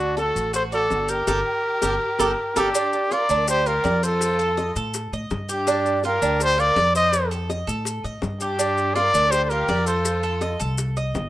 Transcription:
Already playing: D2 D4 F#4
0.16 F#4 A4, high bongo, maracas
0.36 A1, maracas
0.52 F#4 A4 C5, high bongo, maracas
0.71 F#4 A4 D5, high bongo, maracas
0.90 G1, high bongo, low bongo, maracas
1.08 G4 A#4, high bongo, maracas
1.27 G1 G4 A4 A#4, high bongo, maracas
1.82 G1 G4 A4 A#4, high bongo, maracas
2.19 G1 G4 A4 A#4, high bongo, maracas
2.56 G1 D4 G4 A4 A#4, high bongo, maracas
2.74 D4, high bongo, maracas
2.93 high bongo, maracas
3.11 F4 A#4 D5, high bongo, maracas
3.29 D2 D4, maracas
3.48 G4 C5, high bongo, maracas
3.66 F4 G4 A#4, high bongo, maracas
3.84 F2 D5, high bongo, low bongo, maracas
4.02 F4 A4 C5, high bongo, maracas
4.21 high bongo, maracas
4.39 A4, maracas
4.57 D#5, high bongo, maracas
4.76 A2 A4, high bongo, maracas
4.94 high bongo, maracas
5.12 A2 D#5, high bongo, maracas
5.31 G2, high bongo, low bongo, maracas
5.49 D4 G4, high bongo, maracas
5.67 D4, high bongo, maracas
5.85 high bongo, maracas
6.04 F4 G4 A#4, high bongo, maracas
6.22 D2 D4, maracas
6.40 G4 C5, high bongo, maracas
6.58 F4 A#4 D5, high bongo, maracas
6.76 F2 D5, high bongo, low bongo, maracas
6.95 C5 D#5, high bongo, maracas
7.13 high bongo, maracas
7.31 A4, maracas
7.50 D#5, high bongo, maracas
7.67 A2 A4, high bongo, maracas
7.85 high bongo, maracas
8.04 A2 D#5, high bongo, maracas
8.22 G2, high bongo, low bongo, maracas
8.40 D4 G4, high bongo, maracas
8.59 D4, high bongo, maracas
8.78 high bongo, maracas
8.94 F4 A#4 D5, high bongo, maracas
9.14 D2 D4, maracas
9.30 G4 C5, high bongo, maracas
9.42 A4 C5
9.49 F4 G4 A#4, high bongo, maracas
9.68 F2 D5, high bongo, low bongo, maracas
9.86 F4 A4 C5, high bongo, maracas
10.05 high bongo, maracas
10.23 A4, maracas
10.41 D#5, high bongo, maracas
10.60 C2 A4, high bongo, maracas
10.78 high bongo, maracas
10.97 D#5, high bongo, maracas
11.14 G1, high bongo, low bongo, maracas

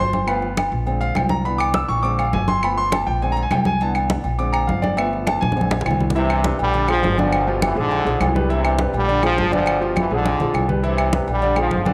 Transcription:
Already playing: G1
0.00 C5 C6
0.13 high conga, low agogo
0.27 F3 A3 B3 B4 F5 G5 B5, high conga, low agogo, claves
0.42 high conga
0.57 high conga, low agogo, claves
0.72 A#1
0.86 D3 G#3 C4, high conga, low agogo
1.01 F5, high conga, low agogo
1.15 C2 G5, high conga, low timbale, low agogo, claves
1.29 A#5, high conga
1.45 D3 E3 B3 B5, high conga, low agogo
1.58 D6, high conga, low agogo, claves
1.74 E6, high conga
1.89 A#1 C#6, high conga, low agogo
2.02 D3 G#3 C4 D6, high conga, low agogo
2.18 F5, high conga, low agogo, claves
2.33 G1 G#5, high conga, low timbale
2.48 C6, high conga, low agogo
2.63 F3 A3 B3 B5, low agogo, claves
2.77 C6, high conga
2.92 A5, high conga, low agogo, claves
3.07 A#1 G5
3.22 D3 G#3 C4 G#5, high conga, low agogo
3.32 A#5
3.36 high conga, low agogo
3.42 G#5
3.51 C2 G5, high conga, low timbale, low agogo, claves
3.65 G#5, high conga
3.80 D3 E3 B3 A5, high conga, low agogo
3.95 high conga, low agogo, claves
4.10 high conga
4.24 A#1, high conga, low agogo
4.38 D3 G#3 C4 D6, high conga, low agogo
4.53 A#5, high conga, low agogo, claves
4.67 G1 F5, high conga
4.82 D5, high conga, low agogo
4.96 F3 A3 B3 E5, high conga, low agogo, claves
5.13 high conga
5.26 A5, high conga, low agogo, claves
5.41 A#1 G#5, high conga
5.52 D3, high conga
5.56 G#3 C4, low agogo
5.61 high conga
5.71 high conga, low agogo
5.81 low conga
5.86 C2, low timbale, low agogo, claves
5.91 low conga
6.00 low conga
6.10 low conga
6.15 E2 G2 C3 E3 E4 E5, high conga, low agogo
6.30 high conga, low agogo, claves
6.44 G3 G4 B4, high conga
6.59 A#1 D3 G3, high conga, low agogo
6.74 D3 D4 D5, high conga, low agogo
6.88 G#2 D3 F3 F4 G#4, high conga, low agogo, claves
7.03 G1, high conga, low timbale
7.18 B2 D3 F3 D4 D5, high conga, low agogo
7.32 high conga, low agogo, claves
7.47 F3 F4 G4, high conga
7.62 E3, high conga, low agogo, claves
7.75 A#1 F2 G#2 D3 F3 F4 G#4
7.91 high conga, low agogo
8.05 A#1 F3 F4 G#4, high conga, low agogo
8.20 C2, high conga, low timbale, low agogo, claves
8.35 G3 G4 B4, high conga
8.49 E2 G2 C3 E3 E4 E5, high conga, low agogo
8.65 high conga, low agogo, claves
8.78 G3 G4 B4, high conga
8.93 A#1 D3 G3, high conga, low agogo
9.07 D3 D4 D5, high conga, low agogo
9.23 G#2 D3 F3 F4 G#4, high conga, low agogo, claves
9.38 G1, high conga, low timbale
9.51 B2 D3 F3 D4 D5, high conga, low agogo
9.66 high conga, low agogo, claves
9.81 F3 F4 G4, high conga
9.96 E3, high conga, low agogo, claves
10.10 A#1 F2 G#2 D3 F3 F4 G#4
10.25 high conga, low agogo
10.40 A#1 F3 F4 G#4, low conga, low agogo
10.54 C2, low agogo, claves
10.68 G3 G4 B4, low conga
10.83 E2 G2 C3 E3 E4 E5, high conga, low agogo
10.98 high conga, low agogo, claves
11.12 G3 G4 B4, high conga
11.27 A#1 D3 G3, high conga, low agogo
11.42 D3 D4 D5, high conga, low agogo
11.56 G#2 D3 F3 F4 G#4, high conga, low agogo, claves
11.71 G1, high conga
11.86 B2 D3 F3 D4 D5, high conga, low agogo

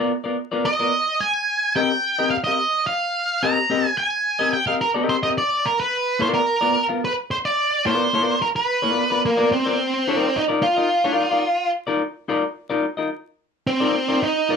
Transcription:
Already playing: F4 A#4 D5
0.00 B3
0.24 B3 F4 A#4 D5
0.52 B3 F4 A#4 D5
0.66 D#5
0.79 B3 F4 A#4 D5
1.20 G#5
1.76 C4 G4 A#4 D#5 G5
2.19 C4 G4 A#4 D#5
2.30 F5
2.44 G4 A#4 D#5 F5
2.48 C4
2.87 F5
3.43 C4 G4 A#4 D#5 A#5
3.70 C4 G4 A#4 D#5
3.88 G#5
3.98 G#5
4.39 C4 G4 A#4 D#5
4.53 G5
4.67 C4 G4 A#4 D#5 F5
4.81 A#4
4.94 C4 G4 A#4 D#5
5.09 C5
5.23 C4 G4 A#4 D#5
5.38 D5
5.66 A#4
5.80 B4
6.19 B3 F4 A#4 C5 D5
6.34 A#4
6.61 B3 F4 A#4 D5
6.89 B3 F4 A#4 F5
7.05 B4
7.31 C5
7.45 D5
7.86 B3 F4 A#4 C5 D5
8.13 B3 F4 A#4 D5
8.42 A#4
8.56 B4
8.82 B3 F4 A#4 D5
9.10 B3 F4 A#4 D5
9.26 A#3
9.37 B3 F4 A#4 D5
9.52 C4
9.66 B3 F4 A#4 D5
10.08 D#4 F4 A#4 D5
10.36 D#4
10.48 D#4 F4 A#4 D5
10.63 F4
10.76 D#4 F4 A#4 D#5
11.04 D#4 F4 A#4 D5
11.31 D#4 F4 A#4 D5
11.87 D#4 F4 A#4 D5
12.28 D#4 F4 A#4 D5
12.70 D#4 F4 A#4 D5
12.97 D#4 F4 A#4 D#5
13.67 C4
13.80 D#4 F4 A#4 D5
14.08 D#4 F4 A#4 D5
14.22 D#4
14.49 D#4 F4 A#4 D5

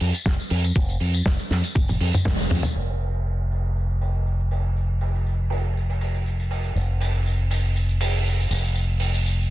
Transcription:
0.00 F2, open hi-hat
0.14 closed hi-hat, tambourine
0.26 F1, kick, snare, closed hi-hat
0.40 tambourine
0.50 F2, open hi-hat
0.64 closed hi-hat, tambourine
0.76 F1, kick, closed hi-hat, tambourine
0.89 closed hi-hat, tambourine
1.00 F2, open hi-hat
1.14 closed hi-hat, tambourine
1.26 F1, kick, snare, closed hi-hat
1.39 closed hi-hat, tambourine
1.51 F2, snare, open hi-hat
1.64 closed hi-hat, tambourine
1.75 F1, kick, closed hi-hat, high tom
1.88 open hi-hat, high tom, tambourine
2.01 F2, open hi-hat
2.14 muted fingered electric bass stroke, closed hi-hat, mid tom, tambourine
2.25 F1, kick, snare, closed hi-hat, mid tom
2.39 closed hi-hat, tambourine
2.50 F2, mid tom, open hi-hat
2.63 closed hi-hat, mid tom, tambourine
2.75 F1, crash
3.00 open hi-hat, tambourine
3.14 tambourine
3.26 tambourine
3.51 open hi-hat, tambourine
3.64 tambourine
3.77 tambourine
3.90 tambourine
4.01 open hi-hat, tambourine
4.15 tambourine
4.26 tambourine
4.40 tambourine
4.51 open hi-hat, tambourine
4.64 tambourine
4.76 tambourine
5.01 open hi-hat, tambourine
5.15 tambourine
5.26 tambourine
5.50 open hi-hat, tambourine
5.64 tambourine
5.77 tambourine
5.89 open hi-hat, tambourine
6.01 open hi-hat, tambourine
6.14 tambourine
6.26 tambourine
6.40 tambourine
6.51 open hi-hat, tambourine
6.64 tambourine
6.75 F1, tambourine
7.01 open hi-hat, tambourine
7.14 tambourine
7.26 tambourine
7.51 open hi-hat, tambourine
7.65 tambourine
7.76 tambourine
7.89 tambourine
8.01 open hi-hat, tambourine
8.15 tambourine
8.26 tambourine
8.40 tambourine
8.51 F1, open hi-hat, tambourine
8.65 tambourine
8.75 tambourine
9.00 open hi-hat, tambourine
9.14 tambourine
9.26 tambourine

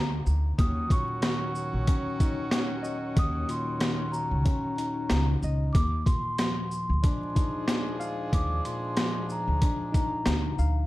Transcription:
Already playing: D2 F3 G#3 D4 G#4
0.26 D2, shaker
0.58 D#2 D#3 F#3 C#4 F#4 D#6, kick, closed hi-hat
0.88 A#2 C#6, kick, closed hi-hat, shaker
1.21 D#3, cross-stick, snare, closed hi-hat
1.55 shaker
1.73 A#1
1.87 C#4, kick, closed hi-hat
2.20 D#4, kick, closed hi-hat, shaker
2.51 cross-stick, snare, closed hi-hat
2.83 D#5, shaker
3.17 D#2 D#6, kick, closed hi-hat
3.49 A#2 C6, closed hi-hat, shaker
3.79 D#3, cross-stick, snare, closed hi-hat
4.12 A#5, shaker
4.31 C#2
4.45 C#4, kick, closed hi-hat
4.76 D#4 A#5, closed hi-hat, shaker
5.10 C#2, cross-stick, snare, closed hi-hat
5.42 C#2 D#5, shaker
5.73 D#2 D6, kick, closed hi-hat
6.06 A#2 C6, kick, closed hi-hat, shaker
6.38 F3, cross-stick, snare, closed hi-hat
6.71 shaker
6.89 D2
7.03 F3 G#3 D4 G#4, kick, closed hi-hat
7.35 D#4, kick, closed hi-hat, shaker
7.68 cross-stick, snare, closed hi-hat
8.00 F5, shaker
8.33 D#2 D6, kick, closed hi-hat
8.64 A#2 C6, closed hi-hat, shaker
8.97 F3, cross-stick, snare, closed hi-hat
9.30 A#5, shaker
9.48 D2
9.62 D4, kick, closed hi-hat
9.92 D#4 A#5, kick, closed hi-hat, shaker
10.26 D2, cross-stick, snare, closed hi-hat
10.59 D2 F5, shaker

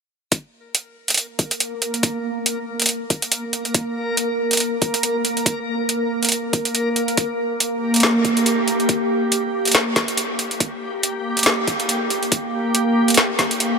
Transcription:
0.32 A#3 A#4, kick, closed hi-hat
0.75 closed hi-hat
1.08 closed hi-hat
1.10 closed hi-hat
1.14 closed hi-hat
1.17 closed hi-hat
1.39 kick, closed hi-hat
1.51 closed hi-hat
1.60 closed hi-hat
1.82 closed hi-hat
1.94 closed hi-hat
2.03 kick, closed hi-hat
2.46 closed hi-hat
2.80 closed hi-hat
2.82 closed hi-hat
2.86 closed hi-hat
2.89 closed hi-hat
3.10 kick, closed hi-hat
3.22 closed hi-hat
3.32 closed hi-hat
3.53 closed hi-hat
3.65 closed hi-hat
3.74 kick, closed hi-hat
4.17 closed hi-hat
4.51 closed hi-hat
4.53 closed hi-hat
4.57 closed hi-hat
4.60 closed hi-hat
4.82 kick, closed hi-hat
4.94 closed hi-hat
5.03 closed hi-hat
5.25 closed hi-hat
5.37 closed hi-hat
5.46 kick, closed hi-hat
5.89 closed hi-hat
6.23 closed hi-hat
6.25 closed hi-hat
6.29 closed hi-hat
6.32 closed hi-hat
6.53 kick, closed hi-hat
6.65 closed hi-hat
6.75 closed hi-hat
6.96 closed hi-hat
7.08 closed hi-hat
7.17 G4, kick, closed hi-hat
7.60 closed hi-hat
7.94 closed hi-hat
7.96 closed hi-hat
8.00 snare, closed hi-hat
8.25 kick, closed hi-hat
8.37 closed hi-hat
8.46 closed hi-hat
8.68 closed hi-hat
8.80 closed hi-hat
8.89 kick, closed hi-hat
9.32 closed hi-hat
9.65 closed hi-hat
9.67 closed hi-hat
9.72 snare, closed hi-hat
9.96 kick, snare, closed hi-hat
10.08 closed hi-hat
10.17 closed hi-hat
10.39 closed hi-hat
10.51 closed hi-hat
10.60 kick, closed hi-hat
11.03 closed hi-hat
11.37 closed hi-hat
11.39 closed hi-hat
11.43 snare, closed hi-hat
11.68 kick, closed hi-hat
11.80 closed hi-hat
11.89 closed hi-hat
12.10 closed hi-hat
12.23 closed hi-hat
12.32 kick, closed hi-hat
12.75 closed hi-hat
13.08 closed hi-hat
13.10 closed hi-hat
13.14 snare, closed hi-hat
13.39 kick, snare, closed hi-hat
13.51 closed hi-hat
13.60 closed hi-hat

